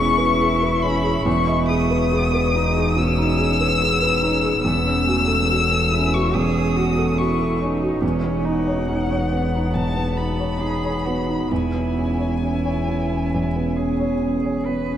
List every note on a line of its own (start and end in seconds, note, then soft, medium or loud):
0.00 1.22 E1 medium
0.00 1.22 E2 medium
0.00 0.83 C#4 soft
0.00 2.10 E4 medium
0.00 0.39 G#4 medium
0.00 0.18 B4 medium
0.00 0.84 C#6 loud
0.18 0.53 B4 medium
0.39 0.74 G#4 medium
0.62 0.96 B4 medium
0.82 1.17 C#4 soft
0.82 1.25 B5 medium
1.04 1.26 G#4 soft
1.25 4.60 E1 medium
1.25 2.92 E2 medium
1.25 1.67 C#6 medium
1.48 1.82 D#5 soft
1.68 2.03 G#4 medium
1.68 2.99 D#6 medium
1.90 2.24 B4 medium
2.11 2.56 B3 medium
2.11 2.45 G#4 soft
2.34 2.67 B4 medium
2.54 2.98 D#4 medium
2.54 2.89 D#4 soft
2.77 3.10 G#4 soft
2.96 3.30 B2 soft
2.96 3.82 C#4 medium
2.96 4.63 E6 medium
3.18 3.52 D#4 soft
3.39 3.72 G#4 medium
3.60 3.94 B4 soft
3.80 4.23 B3 medium
3.80 4.14 G#4 soft
4.01 4.35 B4 soft
4.21 4.62 C#4 medium
4.21 4.56 D#4 soft
4.43 4.64 G#4 soft
4.63 7.98 E1 medium
4.63 6.30 E2 medium
4.63 5.07 B3 medium
4.63 6.15 E6 loud
4.85 5.19 C#4 soft
5.06 5.48 A3 medium
5.06 5.41 F#4 soft
5.27 5.62 A4 soft
5.49 5.93 C#4 medium
5.49 5.84 F#4 soft
5.71 6.05 A4 soft
5.91 6.26 C#4 soft
5.91 6.36 E4 medium
6.14 6.48 F#4 soft
6.14 6.35 C#6 medium
6.34 7.99 E2 soft
6.34 6.78 G#4 medium
6.34 7.20 D#6 medium
6.56 6.89 C#4 soft
6.76 7.17 F#4 medium
6.76 7.10 F#4 soft
6.97 7.31 A4 soft
7.18 7.62 E4 medium
7.18 7.52 F#4 soft
7.18 7.60 C#6 medium
7.40 7.73 A4 soft
7.60 7.94 C#4 soft
7.60 8.04 D#4 medium
7.82 8.03 F#4 soft
8.02 11.46 E1 medium
8.02 9.70 E2 medium
8.02 8.46 C#4 medium
8.24 8.58 B3 soft
8.45 8.90 D#4 medium
8.45 8.80 D#4 soft
8.45 9.76 F#5 medium
8.67 9.01 C#5 soft
8.88 9.31 C#4 medium
8.88 9.23 D#4 soft
9.11 9.45 C#5 soft
9.31 10.62 B3 medium
9.31 9.66 B3 soft
9.55 9.88 D#4 soft
9.74 11.47 E2 soft
9.74 10.19 A5 medium
9.97 10.31 B3 soft
10.17 10.52 D#4 soft
10.17 11.53 B5 medium
10.39 10.74 C#5 soft
10.60 10.96 D#4 soft
10.60 11.06 G#4 soft
10.84 11.19 C#5 soft
11.05 11.42 B3 soft
11.05 11.52 F#4 soft
11.28 11.51 D#4 soft
11.51 14.97 E1 soft
11.51 13.28 E2 soft
11.51 12.33 E4 soft
11.51 14.22 G#5 medium
11.74 12.10 B3 soft
11.97 12.33 C#4 soft
12.19 12.55 C#5 soft
12.42 12.78 C#4 soft
12.42 13.79 E4 soft
12.65 13.01 C#5 soft
12.88 13.24 B3 soft
13.12 13.47 C#4 soft
13.34 14.97 E2 soft
13.56 13.91 B3 soft
13.77 14.13 C#4 soft
13.77 14.67 G#4 soft
14.00 14.35 C#5 soft
14.22 14.57 C#4 soft
14.45 14.80 C#5 soft
14.66 14.97 B3 soft
14.66 14.97 B4 soft
14.89 14.97 C#4 soft